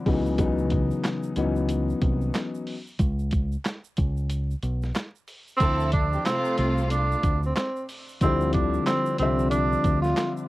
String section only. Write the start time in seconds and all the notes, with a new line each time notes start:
5.60 F3 E4 A4
6.12 E3 C4 G4
6.25 C3 A3 F4